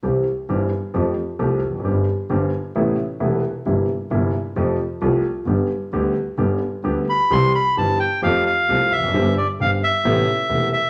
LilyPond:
<<
  \new Staff \with { instrumentName = "Bandoneon" } { \time 4/4 \key c \major \tempo 4 = 132 r1 | r1 | r1 | r2. r8 b''8 |
c'''8 b''8 a''8 g''8 f''8 f''4 e''8~ | e''8 d''8 f''8 e''2 e''8 | }
  \new Staff \with { instrumentName = "Grand piano" } { \clef bass \time 4/4 \key c \major <c, c e g c' g'>8 r8 <g,, g, e g c' g'>8 r8 <f, f a c' g'>8 r8 <c, c f a c' g'>8 r32 e,32 f,32 fis,32 | <g,, g, d g c' g'>8 r8 <g,, g, d g c' g'>8 r8 <a,, a, c a b e'>8 r8 <e,, e, c a b e'>8 r8 | <g,, g, c g bes e'>8 r8 <g,, g, c g bes e'>8 r8 <f, c f a f'>8 r8 <c, c f a f'>8 r8 | <g,, g, d g b g'>8 r8 <d, d g b g'>8 r8 <g,, g, d g b g'>8 r8 <d, d g b g'>8 r8 |
<c, c e g c' g'>8 r8 <g,, g, e g c' g'>8 r8 <f, f a c' g'>8 r8 <c, c f a c' g'>8 r32 e,32 f,32 fis,32 | <g,, g, d g c' g'>8 r8 <g,, g, d g c' g'>8 r8 <a,, a, c a b e'>8 r8 <e,, e, c a b e'>8 r8 | }
  \new Staff \with { instrumentName = "Double bass" } { \clef bass \time 4/4 \key c \major c,8 r8 g,,8 r8 f,8 r8 c,8 f,,8 | g,,8 r8 g,,8 r8 a,,8 r8 e,,8 r8 | g,,8 r8 g,,8 r8 f,8 r8 c,8 r8 | g,,8 r8 d,8 r8 g,,8 r8 d,8 r8 |
c,8 r8 g,,8 r8 f,8 r8 c,8 f,,8 | g,,8 r8 g,,8 r8 a,,8 r8 e,,8 r8 | }
>>